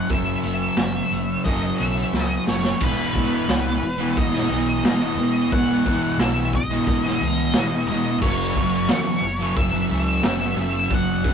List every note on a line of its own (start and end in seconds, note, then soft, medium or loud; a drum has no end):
0.00 0.13 F#5 loud
0.09 0.32 F#1 medium
0.09 1.44 F#2 medium
0.09 1.44 C#3 medium
0.09 1.45 F#3 medium
0.09 1.44 E5 loud
0.09 kick loud
0.09 closed hi-hat medium
0.43 0.66 F#1 medium
0.43 closed hi-hat medium
0.77 1.00 F#1 medium
0.77 snare loud
0.77 closed hi-hat medium
1.11 1.34 F#1 medium
1.11 closed hi-hat medium
1.45 1.68 F#1 medium
1.45 2.79 F#2 medium
1.45 2.80 C#3 medium
1.45 2.80 F#3 medium
1.45 1.78 D#5 medium
1.45 kick loud
1.45 closed hi-hat medium
1.78 2.02 B1 medium
1.78 2.24 E5 medium
1.78 closed hi-hat medium
1.97 closed hi-hat medium
2.12 2.36 C#2 medium
2.12 snare medium
2.24 2.43 D#5 medium
2.47 2.71 F#1 medium
2.47 2.83 C#5 medium
2.47 snare medium
2.64 snare medium
2.80 3.11 E1 loud
2.80 3.15 E2 medium
2.80 3.15 B2 medium
2.80 3.17 E3 medium
2.80 4.22 B4 loud
2.80 kick loud
2.80 crash loud
3.15 3.45 E1 medium
3.15 3.47 E2 medium
3.15 3.48 B2 medium
3.15 3.50 E3 medium
3.15 kick medium
3.15 open hi-hat medium
3.48 3.78 C#2 medium
3.48 3.81 E2 loud
3.48 3.66 B2 loud
3.48 3.64 E3 loud
3.48 snare loud
3.48 open hi-hat medium
3.64 3.81 B2 medium
3.64 3.82 E3 medium
3.82 4.12 E1 medium
3.82 muted distorted electric guitar stroke medium
3.82 open hi-hat medium
3.98 4.33 B2 medium
3.98 4.31 E3 medium
4.17 4.46 E1 loud
4.17 4.83 D#5 loud
4.17 kick loud
4.17 open hi-hat medium
4.32 4.49 B2 medium
4.32 4.51 E3 medium
4.32 snare soft
4.49 4.80 B1 medium
4.49 4.83 E2 medium
4.49 4.83 B2 medium
4.49 4.85 E3 medium
4.49 open hi-hat medium
4.83 5.13 E1 medium
4.83 5.16 E2 loud
4.83 5.02 B2 loud
4.83 5.00 E3 loud
4.83 5.54 D#5 loud
4.83 snare loud
4.83 open hi-hat medium
5.01 5.17 B2 medium
5.01 5.19 E3 medium
5.17 5.47 E1 medium
5.17 5.51 E2 medium
5.17 5.51 B2 medium
5.17 5.53 E3 medium
5.17 open hi-hat medium
5.52 6.10 E1 medium
5.52 5.84 E2 medium
5.52 5.85 B2 medium
5.52 5.86 E3 medium
5.52 6.22 F#5 loud
5.52 kick loud
5.52 open hi-hat medium
5.85 6.18 E2 medium
5.85 6.20 B2 medium
5.85 6.21 E3 medium
5.85 kick medium
5.85 open hi-hat medium
6.18 6.77 B1 medium
6.18 6.53 E2 medium
6.18 6.37 B2 loud
6.18 6.36 E3 loud
6.18 6.55 E5 loud
6.18 snare loud
6.18 open hi-hat medium
6.36 6.54 B2 medium
6.36 6.55 E3 medium
6.53 7.87 D#5 loud
6.53 muted distorted electric guitar stroke soft
6.53 kick medium
6.53 open hi-hat medium
6.70 7.05 B2 medium
6.70 7.04 E3 medium
6.86 7.16 E1 medium
6.86 kick loud
6.86 open hi-hat medium
7.04 7.21 B2 medium
7.04 7.23 E3 medium
7.04 snare soft
7.21 7.50 C#2 medium
7.21 7.53 E2 medium
7.21 7.54 B2 medium
7.21 7.56 E3 medium
7.21 open hi-hat medium
7.54 7.84 E1 medium
7.54 7.87 E2 loud
7.54 7.72 B2 loud
7.54 7.71 E3 loud
7.54 snare loud
7.54 open hi-hat medium
7.71 7.88 B2 medium
7.71 7.90 E3 medium
7.88 8.18 E1 medium
7.88 8.20 E2 medium
7.88 8.21 B2 medium
7.88 8.23 E3 medium
7.88 8.21 D#5 loud
7.88 open hi-hat medium
8.21 8.51 F#1 loud
8.21 8.54 F#2 medium
8.21 8.55 C#3 loud
8.21 8.57 F#3 loud
8.21 9.56 C#5 loud
8.21 kick loud
8.21 crash loud
8.55 8.85 F#1 medium
8.55 8.88 F#2 medium
8.55 8.88 C#3 medium
8.55 8.90 F#3 medium
8.55 kick medium
8.55 open hi-hat medium
8.89 9.18 E2 medium
8.89 9.22 F#2 medium
8.89 9.07 C#3 loud
8.89 9.05 F#3 loud
8.89 snare loud
8.89 open hi-hat medium
9.06 9.22 C#3 medium
9.06 9.23 F#3 medium
9.22 9.51 F#1 medium
9.22 muted distorted electric guitar stroke soft
9.22 open hi-hat medium
9.39 9.74 C#3 medium
9.39 9.71 F#3 medium
9.56 9.85 F#1 loud
9.56 10.25 E5 loud
9.56 kick loud
9.56 open hi-hat medium
9.72 9.90 C#3 medium
9.72 9.91 F#3 medium
9.90 10.19 C#2 medium
9.90 10.23 F#2 medium
9.90 10.24 C#3 medium
9.90 10.25 F#3 medium
9.90 open hi-hat medium
10.23 10.53 F#1 medium
10.23 10.56 F#2 medium
10.23 10.41 C#3 loud
10.23 10.38 F#3 loud
10.23 10.94 E5 loud
10.23 snare loud
10.23 open hi-hat medium
10.39 10.57 C#3 medium
10.39 10.58 F#3 medium
10.57 10.86 F#1 medium
10.57 10.88 F#2 medium
10.57 10.90 C#3 medium
10.57 10.91 F#3 medium
10.57 open hi-hat medium
10.90 11.34 F#1 medium
10.90 11.23 F#2 medium
10.90 11.24 C#3 loud
10.90 11.25 F#3 medium
10.90 kick loud
10.90 open hi-hat medium
10.94 11.34 F#5 loud
11.24 11.34 F#2 medium
11.24 11.34 C#3 medium
11.24 11.34 F#3 medium
11.24 kick medium
11.24 open hi-hat medium